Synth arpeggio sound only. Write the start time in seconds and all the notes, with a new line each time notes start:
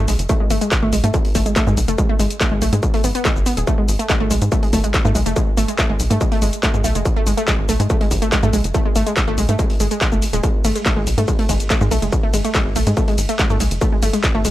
0.08 G#3
0.29 A3
0.40 G#3
0.51 A3
0.61 G#3
0.83 A3
0.93 G#3
1.04 A3
1.14 G#3
1.35 A3
1.46 G#3
1.56 A3
1.67 G#3
1.88 A3
1.98 G#3
2.09 A3
2.19 G#3
2.41 A3
2.51 G#3
2.62 A3
2.73 G#3
2.94 A3
3.04 B3
3.15 B3
3.25 G#3
3.46 B3
3.57 G#4
3.67 A3
3.78 G#3
3.99 A3
4.09 G#3
4.20 A3
4.31 G#3
4.52 A3
4.63 G#3
4.73 A3
4.84 G#3
5.05 A3
5.15 G#3
5.26 A3
5.36 G#3
5.57 A3
5.68 G#3
5.78 A3
5.90 G#3
6.10 A3
6.21 G#3
6.32 A3
6.42 G#3
6.63 A3
6.74 G#3
6.84 A3
6.95 G#3
7.16 A3
7.27 G#3
7.37 A3
7.48 G#3
7.69 A3
7.80 G#3
7.90 A3
8.01 G#3
8.22 A3
8.32 G#3
8.43 A3
8.53 G#3
8.74 A3
8.85 G#3
8.96 A3
9.06 G#3
9.28 A3
9.38 G#3
9.49 A3
9.59 G#3
9.80 G#3
9.91 G#3
10.01 G#3
10.12 A3
10.33 G#3
10.44 G#3
10.65 A3
10.76 G#3
10.86 A3
10.97 G#3
11.18 A3
11.28 G#3
11.39 A3
11.49 G#3
11.70 A3
11.81 G#3
11.91 A3
12.02 G#3
12.23 A3
12.34 G#3
12.45 A3
12.55 G#3
12.76 A3
12.87 G#3
12.97 A3
13.08 G#3
13.29 A3
13.39 G#3
13.50 A3
13.60 G#3
13.82 A3
13.92 G#3
14.03 A3
14.13 G#3
14.35 A3
14.45 G#3